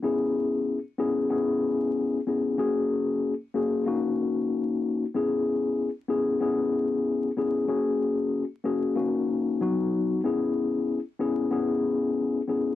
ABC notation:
X:1
M:4/4
L:1/8
Q:"Swing 16ths" 1/4=94
K:C#dor
V:1 name="Tine electric piano"
[B,CEG]2 z [B,CEG] [B,CEG]3 [B,CEG] | [A,CFG]2 z [A,CFG] [A,CDF]4 | [B,CEG]2 z [B,CEG] [B,CEG]3 [B,CEG] | [A,CFG]2 z [A,CFG] [A,CDF]2 [F,B,DF]2 |
[B,CEG]2 z [B,CEG] [B,CEG]3 [B,CEG] |]